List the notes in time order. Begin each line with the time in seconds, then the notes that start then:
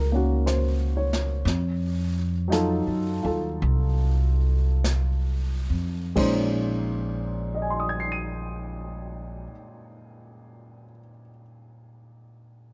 Already playing: C#2 F#3 A#3 F4 G#4
0.00 A#4
0.12 A#3 C#4 F#4
0.46 C5, brush sweep, snare, hi-hat pedal
0.97 C#5
1.13 snare
1.45 F2, brush sweep, snare
2.48 F#3 D#4 F4
2.52 A4, brush sweep, snare, hi-hat pedal
2.87 F#2
3.23 D#2 F4 A4
3.62 C2, brush sweep
4.84 brush sweep, snare, hi-hat pedal
5.70 F2
6.16 A#1 A#2 G#3 C#4 D#4 C5, kick, crash
7.55 D#5
7.62 G#5
7.70 C6
7.80 D#6
7.89 G#6
8.00 C7
8.12 D#7